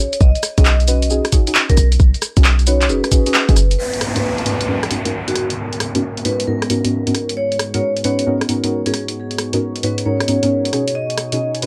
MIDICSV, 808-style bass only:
0, 0, Header, 1, 2, 480
1, 0, Start_track
1, 0, Key_signature, 5, "minor"
1, 0, Tempo, 447761
1, 222, Time_signature, 4, 2, 24, 8
1, 12501, End_track
2, 0, Start_track
2, 0, Title_t, "808-style bass"
2, 0, Program_c, 0, 38
2, 222, Note_on_c, 0, 35, 95
2, 353, Note_off_c, 0, 35, 0
2, 620, Note_on_c, 0, 35, 101
2, 1297, Note_off_c, 0, 35, 0
2, 1902, Note_on_c, 0, 35, 82
2, 2114, Note_off_c, 0, 35, 0
2, 2141, Note_on_c, 0, 35, 97
2, 2273, Note_off_c, 0, 35, 0
2, 2539, Note_on_c, 0, 35, 101
2, 3101, Note_on_c, 0, 30, 83
2, 3117, Note_off_c, 0, 35, 0
2, 3233, Note_off_c, 0, 30, 0
2, 3740, Note_on_c, 0, 32, 84
2, 3822, Note_on_c, 0, 30, 98
2, 3838, Note_off_c, 0, 32, 0
2, 4034, Note_off_c, 0, 30, 0
2, 12501, End_track
0, 0, End_of_file